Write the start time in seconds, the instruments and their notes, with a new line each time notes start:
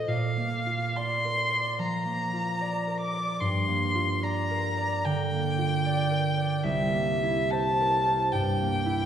Already playing: harp A3 F4 A4 C5
0.08 harp A#2, violin F5
0.37 harp A#3
0.66 harp F4
0.96 harp D5, violin C6
1.24 harp A#4
1.51 harp D5
1.79 harp F3, violin A#5
2.05 harp A#3
2.33 harp F4
2.61 harp D5
2.87 harp A#4
3.01 violin D6
3.14 harp D5
3.40 harp G2, violin C6
3.67 harp A#3
3.95 harp F4
4.22 harp D5, violin A#5
4.50 harp A#4
4.77 harp D5
5.05 harp D3, violin G5
5.32 harp A#3
5.58 harp F4
5.86 harp D5
6.11 harp A#4
6.37 harp D5
6.63 harp C2, violin E5
6.92 harp A#3
7.23 harp E4
7.51 harp C5, violin A5
7.80 harp A#4
8.07 harp C5
8.32 harp G2, violin G5
8.61 harp A#3
8.86 harp E4